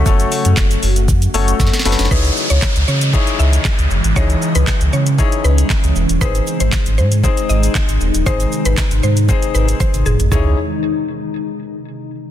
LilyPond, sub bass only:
\new Staff \with { instrumentName = "Sub bass" } { \clef bass \time 4/4 \key cis \minor \tempo 4 = 117 fis,,8 r16 fis,16 fis,,8 fis,,8 fis,8 fis,,8 fis,16 r16 fis,,16 fis,,16 | cis,8 r16 cis,16 r16 cis,16 cis8. r16 cis,8 r16 cis,16 fis,,16 gis,,16 | cis,8 r16 cis,16 r16 cis,16 cis8. r16 cis,8 r16 cis,16 e,,16 dis,,16 | gis,,8 r16 gis,,16 r16 gis,,16 gis,8. r16 gis,,8 r16 gis,,16 e,,16 dis,,16 |
gis,,8 r16 gis,,16 r16 gis,,16 gis,8. r16 gis,,8 r16 gis,,16 fis,,16 gis,,16 | cis,8 r2. r8 | }